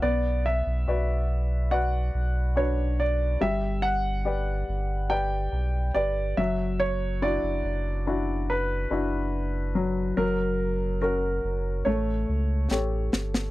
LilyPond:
<<
  \new Staff \with { instrumentName = "Grand piano" } { \time 4/4 \key b \minor \tempo 4 = 71 d''8 e''4. fis''4 cis''8 d''8 | e''8 fis''4. g''4 d''8 e''8 | cis''8 d''4. b'2 | ais'4 ais'4 cis''4. r8 | }
  \new Staff \with { instrumentName = "Upright piano" } { \time 4/4 \key b \minor b4 <fis' b' d''>4 <fis' b' d''>4 <d' fis' b'>4 | g4 <g' b' d''>4 <g' b' d''>4 <g' b' d''>8 fis8~ | fis8 <d' e' fis'>4 <d' e' fis'>4 <d' e' fis'>4 fis8 | fis4 <cis' fis' ais'>4 a4 <g' a' cis''>4 | }
  \new Staff \with { instrumentName = "Sub bass" } { \clef bass \time 4/4 \key b \minor b,,8. b,,16 b,,4. b,,4. | g,,4. g,,4 b,,8 g,,8 fis,,8~ | fis,,8. fis,,16 fis,,4. fis,,4. | fis,,4. fis,,8 a,,8 cis,8 a,,8 g,,8 | }
  \new DrumStaff \with { instrumentName = "Drums" } \drummode { \time 4/4 r4 r4 r4 r4 | r4 r4 r4 r4 | r4 r4 r4 r4 | r4 r4 r4 sn8 sn16 sn16 | }
>>